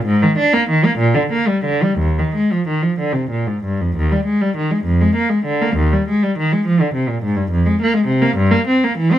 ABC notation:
X:1
M:6/8
L:1/16
Q:3/8=67
K:Eb
V:1 name="Cello" clef=bass
A,, E, D B, E, B, B,, D, B, G, D, G, | E,, E, A, F, E, F, D, C, B,, A,, G,, F,, | E,, G, A, G, E, A, F,, A, B, A, D, B, | E,, G, A, G, E, A, F, D, C, B,, A,, G,, |
F,, A, B, A, C, B, G,, B, C B, =E, C |]